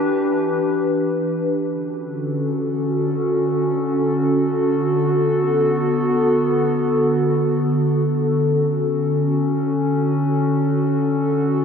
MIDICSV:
0, 0, Header, 1, 2, 480
1, 0, Start_track
1, 0, Key_signature, 2, "major"
1, 0, Tempo, 500000
1, 11182, End_track
2, 0, Start_track
2, 0, Title_t, "Ambient pad"
2, 0, Program_c, 0, 92
2, 0, Note_on_c, 0, 52, 80
2, 0, Note_on_c, 0, 62, 76
2, 0, Note_on_c, 0, 67, 75
2, 0, Note_on_c, 0, 71, 90
2, 1598, Note_off_c, 0, 62, 0
2, 1599, Note_off_c, 0, 52, 0
2, 1599, Note_off_c, 0, 67, 0
2, 1599, Note_off_c, 0, 71, 0
2, 1631, Note_on_c, 0, 50, 79
2, 1631, Note_on_c, 0, 61, 75
2, 1631, Note_on_c, 0, 69, 88
2, 1632, Note_on_c, 0, 66, 73
2, 4799, Note_off_c, 0, 61, 0
2, 4829, Note_on_c, 0, 59, 78
2, 7998, Note_off_c, 0, 59, 0
2, 8031, Note_on_c, 0, 61, 73
2, 11182, Note_off_c, 0, 50, 0
2, 11182, Note_off_c, 0, 61, 0
2, 11182, Note_off_c, 0, 66, 0
2, 11182, Note_off_c, 0, 69, 0
2, 11182, End_track
0, 0, End_of_file